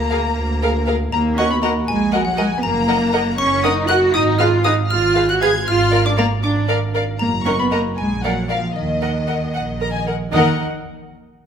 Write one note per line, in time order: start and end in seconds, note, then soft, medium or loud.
0.00 0.24 D2 medium
0.00 0.84 A#3 medium
0.00 0.83 A#5 medium
0.00 0.85 A#5 medium
0.11 0.20 G#4 soft
0.11 0.19 A#4 medium
0.11 0.20 A#4 soft
0.11 0.19 F5 medium
0.37 1.00 D2 medium
0.62 0.70 G#4 medium
0.62 0.70 A#4 soft
0.62 0.70 A#4 medium
0.62 0.70 F5 medium
0.87 0.95 G#4 soft
0.87 0.95 A#4 soft
0.87 0.95 A#4 medium
0.87 0.95 F5 soft
1.12 1.75 D#2 medium
1.12 1.36 A#3 medium
1.12 1.36 A#5 medium
1.12 1.21 A#5 medium
1.38 1.50 C#4 medium
1.38 1.46 F#4 medium
1.38 1.46 A#4 soft
1.38 1.46 D#5 medium
1.38 1.46 F#5 medium
1.38 1.50 C#6 medium
1.50 1.63 B3 medium
1.50 1.62 B5 medium
1.50 1.56 B5 medium
1.62 1.71 A#3 medium
1.62 1.71 F#4 soft
1.62 1.71 A#4 soft
1.62 1.71 D#5 medium
1.62 1.71 F#5 medium
1.62 1.70 A#5 medium
1.62 1.86 A#5 medium
1.88 2.51 A#1 medium
1.88 2.25 G#3 medium
1.88 2.25 G#5 medium
1.88 2.23 G#5 medium
2.13 2.21 F#4 medium
2.13 2.21 A#4 medium
2.13 2.21 D#5 medium
2.13 2.21 F#5 medium
2.25 2.31 F#3 medium
2.25 2.37 F#5 medium
2.25 2.38 F#5 medium
2.37 2.45 G#3 medium
2.37 2.45 F#4 soft
2.37 2.45 A#4 soft
2.37 2.46 D#5 medium
2.37 2.46 F#5 medium
2.37 2.62 G#5 medium
2.37 2.64 G#5 medium
2.56 2.63 B3 medium
2.63 3.26 F#1 medium
2.63 3.39 A#3 medium
2.63 3.35 A#5 medium
2.63 3.37 A#5 medium
2.88 2.96 A#4 medium
2.88 2.96 D#5 medium
2.88 2.96 F#5 medium
3.13 3.21 A#4 medium
3.13 3.21 D#5 medium
3.13 3.21 F#5 medium
3.38 4.02 F#1 medium
3.38 3.63 C#4 medium
3.38 3.62 C#6 medium
3.38 3.63 C#6 medium
3.64 3.89 D#4 medium
3.64 3.72 A#4 medium
3.64 3.72 D#5 medium
3.64 3.72 F#5 medium
3.64 3.87 D#6 medium
3.64 3.72 D#6 medium
3.89 4.14 F#4 medium
3.89 3.97 A#4 medium
3.89 3.97 D#5 medium
3.89 3.97 F#5 medium
3.89 4.12 F#6 medium
3.89 3.97 F#6 medium
4.14 4.78 G#1 medium
4.14 4.39 D#4 medium
4.14 4.37 D#6 medium
4.14 4.22 D#6 medium
4.39 4.65 F4 medium
4.39 4.47 G#4 medium
4.39 4.47 B4 soft
4.39 4.48 F5 medium
4.39 4.63 F6 medium
4.39 4.48 F6 medium
4.64 4.73 D#4 medium
4.64 4.72 G#4 medium
4.64 4.72 B4 soft
4.64 4.73 F5 medium
4.64 4.88 D#6 medium
4.64 4.73 D#6 medium
4.90 5.54 G#1 medium
4.90 5.28 F4 medium
4.90 5.28 F6 medium
4.90 5.26 F6 medium
5.15 5.23 G#4 medium
5.15 5.23 B4 medium
5.15 5.23 F5 medium
5.29 5.41 F#4 medium
5.29 5.34 F#6 medium
5.29 5.41 F#6 medium
5.41 5.49 G#4 soft
5.41 5.49 G#4 medium
5.41 5.49 B4 soft
5.41 5.49 F5 medium
5.41 5.66 G#6 medium
5.67 6.31 G#1 medium
5.67 6.04 F4 medium
5.67 6.05 F6 medium
5.67 6.03 F6 medium
5.91 5.99 A#4 medium
5.91 5.99 D5 medium
5.91 5.99 F5 medium
6.05 6.10 D4 medium
6.05 6.10 D6 medium
6.05 6.17 D6 medium
6.17 6.26 A#3 medium
6.17 6.26 A#4 soft
6.17 6.25 D5 medium
6.17 6.25 F5 medium
6.17 6.25 A#5 medium
6.17 6.42 A#5 medium
6.43 7.07 G#1 medium
6.43 6.68 D4 medium
6.43 6.51 D6 medium
6.43 6.67 D6 medium
6.68 6.77 A#4 medium
6.68 6.76 D5 medium
6.68 6.76 F5 medium
6.94 7.02 A#4 soft
6.94 7.02 D5 soft
6.94 7.02 F5 soft
7.19 7.85 F#1 medium
7.19 7.28 A#3 medium
7.19 7.44 A#5 medium
7.46 7.51 C#4 medium
7.46 7.54 A#4 soft
7.46 7.54 D#5 soft
7.46 7.54 F#5 soft
7.46 7.59 C#6 medium
7.46 7.58 C#6 medium
7.59 7.72 B3 medium
7.59 7.64 B5 soft
7.59 7.71 B5 medium
7.71 7.80 A#3 medium
7.71 7.79 A#4 soft
7.71 7.80 D#5 soft
7.71 7.79 F#5 soft
7.71 7.96 A#5 medium
7.71 7.80 A#5 medium
7.98 8.63 A#1 medium
7.98 8.24 G#3 medium
7.98 8.24 G#5 medium
7.98 8.22 G#5 medium
8.24 8.50 F#3 medium
8.24 8.32 A#4 soft
8.24 8.32 D5 soft
8.24 8.32 F5 soft
8.24 8.50 F#5 soft
8.24 8.48 F#5 soft
8.49 8.76 F3 medium
8.49 8.58 A#4 soft
8.49 8.57 D5 soft
8.49 8.57 F5 soft
8.49 8.74 F5 soft
8.49 8.76 F5 soft
8.76 9.41 D#2 soft
8.76 10.05 D#3 medium
8.76 10.03 D#5 soft
8.76 10.05 D#5 medium
9.02 9.10 A#4 soft
9.02 9.10 D#5 soft
9.02 9.10 F#5 soft
9.28 9.36 A#4 soft
9.28 9.36 D#5 soft
9.28 9.36 F#5 soft
9.54 10.20 A#1 soft
9.54 9.62 F#5 soft
9.80 9.89 A#4 soft
9.80 9.93 A#5 soft
9.93 10.06 G#5 soft
10.06 10.15 A#4 soft
10.06 10.14 F#5 soft
10.32 10.61 D#2 medium
10.32 10.61 D#3 medium
10.32 10.61 D#4 medium
10.32 10.61 A#4 soft
10.32 10.61 D#5 medium
10.32 10.61 F#5 medium
10.32 10.62 D#6 medium